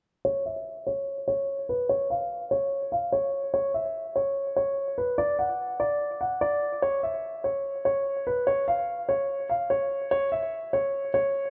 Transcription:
0.25 0.42 C#5 loud
0.46 0.84 E5 medium
0.87 1.25 C#5 medium
1.28 1.66 C#5 medium
1.69 1.86 B4 medium
1.89 2.07 C#5 medium
2.10 2.49 F5 medium
2.51 2.90 C#5 medium
2.92 3.09 F5 medium
3.12 3.51 C#5 medium
3.54 3.71 C#5 loud
3.74 4.13 E5 medium
4.16 4.54 C#5 medium
4.56 4.95 C#5 medium
4.98 5.15 B4 medium
5.18 5.36 D5 loud
5.39 5.77 F#5 medium
5.80 6.18 D5 medium
6.21 6.38 F#5 medium
6.41 6.80 D5 medium
6.82 7.00 C#5 loud
7.03 7.42 E5 medium
7.44 7.83 C#5 medium
7.85 8.24 C#5 medium
8.27 8.44 B4 medium
8.47 8.64 C#5 medium
8.68 9.06 F5 medium
9.09 9.47 C#5 medium
9.49 9.67 F5 medium
9.70 10.09 C#5 medium
10.11 10.29 C#5 loud
10.32 10.70 E5 medium
10.73 11.12 C#5 medium
11.14 11.50 C#5 medium

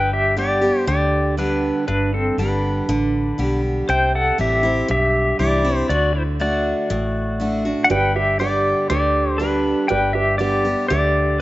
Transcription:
0.00 0.70 G1 medium
0.00 0.83 G2 medium
0.00 0.11 B4 medium
0.00 0.13 G5 loud
0.13 0.36 G4 medium
0.13 0.36 E5 medium
0.37 0.61 D3 medium
0.37 0.62 G3 medium
0.37 0.62 B3 medium
0.37 0.60 G4 medium
0.37 0.85 G4 medium
0.37 0.87 D5 medium
0.61 0.87 B3 soft
0.61 0.86 G4 medium
0.87 1.71 D2 medium
0.87 1.36 D3 medium
0.87 1.34 G4 medium
0.87 1.35 D5 loud
1.37 1.85 D3 medium
1.37 1.86 G3 medium
1.37 1.86 B3 medium
1.37 1.85 D4 medium
1.37 1.86 G4 medium
1.37 1.87 B4 medium
1.88 2.30 G1 medium
1.88 2.83 G2 medium
1.88 2.12 D4 medium
1.88 2.14 B4 medium
2.14 2.37 C4 medium
2.14 2.40 A4 medium
2.38 2.81 G1 medium
2.38 2.86 D3 medium
2.38 2.86 G3 medium
2.38 2.87 B3 medium
2.38 3.61 D4 medium
2.38 2.87 G4 medium
2.38 3.60 B4 medium
2.89 3.31 A1 medium
2.89 3.37 D3 medium
3.38 3.81 B1 medium
3.38 3.86 D3 soft
3.38 3.86 G3 medium
3.38 3.87 B3 medium
3.38 3.87 G4 medium
3.89 4.30 C2 medium
3.89 4.84 C3 medium
3.89 4.12 C5 medium
3.89 4.13 G5 loud
4.15 4.38 A4 medium
4.15 4.40 F#5 medium
4.38 4.82 A1 medium
4.38 4.63 E3 medium
4.38 4.63 G3 medium
4.38 4.63 C4 medium
4.38 4.62 E4 medium
4.38 4.87 G4 medium
4.38 4.90 E5 medium
4.63 4.89 C4 soft
4.63 4.88 E4 medium
4.88 5.32 B1 medium
4.88 5.84 G2 medium
4.88 5.37 G4 medium
4.88 5.37 E5 loud
5.39 5.82 C2 medium
5.39 5.63 E3 medium
5.39 5.64 G3 medium
5.39 5.64 C4 medium
5.39 5.63 E4 medium
5.39 5.86 G4 medium
5.39 5.86 D5 medium
5.65 5.89 C4 soft
5.65 5.89 E4 medium
5.89 6.72 D2 medium
5.89 6.38 D3 medium
5.89 6.13 F#4 medium
5.89 6.15 D5 medium
6.15 6.22 E4 medium
6.15 6.22 C5 medium
6.40 6.87 D3 medium
6.40 6.88 A3 soft
6.40 6.88 D4 medium
6.40 6.88 F#4 medium
6.40 7.62 F#4 medium
6.40 7.62 D5 medium
6.90 7.73 A1 medium
6.90 7.85 A2 medium
7.40 7.64 D3 medium
7.40 7.64 A3 soft
7.40 7.65 D4 medium
7.40 7.64 F#4 medium
7.65 7.90 D4 soft
7.65 7.89 F#4 medium
7.84 7.90 F#5 medium
7.90 8.73 G1 medium
7.90 8.85 G2 medium
7.90 8.09 G4 medium
7.90 8.09 B4 medium
7.90 8.14 B4 medium
7.90 8.09 D5 loud
7.90 8.17 G5 loud
8.16 8.34 G4 medium
8.16 8.39 G4 medium
8.16 8.34 B4 medium
8.16 8.39 E5 medium
8.39 8.87 D3 medium
8.39 8.88 G3 soft
8.39 8.88 B3 medium
8.39 8.77 G4 medium
8.39 8.88 G4 medium
8.39 8.87 G4 medium
8.39 8.78 B4 medium
8.39 8.87 D5 medium
8.39 8.78 D5 medium
8.90 9.73 D2 medium
8.90 9.38 D3 medium
8.90 9.28 G4 medium
8.90 9.38 G4 medium
8.90 9.28 B4 medium
8.90 9.32 D5 loud
8.90 9.28 D5 medium
9.32 9.42 C5 loud
9.38 9.88 D3 medium
9.38 9.88 G3 medium
9.38 9.88 B3 medium
9.38 9.87 D4 medium
9.38 9.78 G4 medium
9.38 9.89 G4 medium
9.38 9.86 B4 medium
9.38 9.78 B4 medium
9.38 9.78 D5 medium
9.88 10.74 G1 medium
9.88 10.85 G2 medium
9.88 10.09 G4 medium
9.88 10.14 B4 medium
9.88 10.09 B4 medium
9.88 10.09 D5 loud
9.88 10.13 G5 loud
10.13 10.34 G4 medium
10.13 10.39 G4 medium
10.13 10.34 B4 medium
10.13 10.34 D5 medium
10.13 10.38 E5 medium
10.38 10.64 D3 medium
10.38 10.64 G3 medium
10.38 10.65 B3 medium
10.38 10.77 G4 medium
10.38 10.87 G4 medium
10.38 10.64 G4 medium
10.38 10.78 B4 medium
10.38 10.87 D5 medium
10.38 10.77 D5 medium
10.65 10.90 B3 soft
10.65 10.89 G4 soft
10.88 11.42 D2 medium
10.88 11.39 D3 medium
10.88 11.37 G4 medium
10.88 11.28 G4 medium
10.88 11.28 B4 medium
10.88 11.41 D5 medium
10.88 11.28 E5 medium

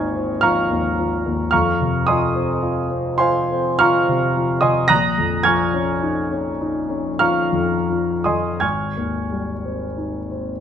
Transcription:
0.00 1.47 G#1 medium
0.00 0.70 D#2 soft
0.00 0.43 F3 soft
0.00 0.15 C4 soft
0.00 1.54 D#4 soft
0.00 1.54 D#5 medium
0.00 0.43 F5 medium
0.00 1.55 G#5 medium
0.00 0.43 A#5 medium
0.00 1.54 C6 medium
0.00 0.43 C#6 medium
0.00 1.55 D#6 medium
0.00 0.41 F6 medium
0.00 0.40 G#6 medium
0.15 0.59 C4 soft
0.41 0.87 F3 soft
0.41 1.49 F5 medium
0.41 1.49 A#5 medium
0.41 1.49 C#6 medium
0.41 1.49 F6 medium
0.70 1.14 D#2 soft
0.98 1.42 F3 soft
1.26 1.53 D#2 soft
1.51 4.87 F2 soft
1.51 2.03 F5 medium
1.51 2.03 A#5 medium
1.51 2.03 C#6 medium
1.51 2.06 F6 medium
1.81 2.23 C3 soft
2.07 2.52 F3 soft
2.07 3.17 D#5 medium
2.07 3.17 G#5 medium
2.07 3.16 C6 medium
2.07 3.20 D#6 medium
2.35 2.79 C4 soft
2.62 3.08 F4 soft
2.90 3.39 C4 soft
3.18 3.68 F4 soft
3.18 3.76 C5 medium
3.18 3.76 F5 medium
3.18 3.75 G#5 medium
3.18 3.79 C6 medium
3.51 3.97 C4 soft
3.79 4.25 F3 soft
3.79 4.59 F5 medium
3.79 4.59 A#5 medium
3.79 4.59 C#6 medium
3.79 4.63 F6 medium
4.09 4.53 C3 soft
4.36 4.80 F3 soft
4.61 4.90 C3 soft
4.61 4.88 D#5 medium
4.61 4.88 G#5 medium
4.61 4.88 C6 medium
4.61 4.87 D#6 medium
4.88 8.59 A#1 medium
4.88 5.41 A#5 medium
4.88 5.41 D#6 medium
4.88 5.41 F#6 medium
4.88 5.44 A#6 loud
5.18 5.63 F2 soft
5.43 5.91 F3 soft
5.43 7.17 G#5 medium
5.43 7.17 C#6 medium
5.43 7.17 F6 medium
5.43 7.20 G#6 medium
5.74 6.20 C#4 soft
6.02 6.49 D#4 soft
6.32 6.79 C#4 soft
6.61 7.09 D#4 soft
6.89 7.40 C#4 soft
7.19 7.75 F3 soft
7.19 8.22 F5 medium
7.19 8.22 A#5 medium
7.19 8.22 C#6 medium
7.19 8.25 F6 medium
7.52 8.11 F2 soft
7.89 8.48 F3 soft
8.24 8.63 F2 soft
8.24 8.60 D#5 soft
8.24 8.59 G#5 soft
8.24 8.60 C6 medium
8.24 8.62 D#6 medium
8.60 10.60 G#1 soft
8.60 10.60 G#5 medium
8.60 10.60 C#6 medium
8.60 10.60 F6 soft
8.60 10.60 G#6 medium
8.97 9.52 D#2 soft
9.31 9.85 G3 soft
9.65 10.18 C4 soft
9.97 10.51 D#4 soft
10.31 10.60 C4 soft

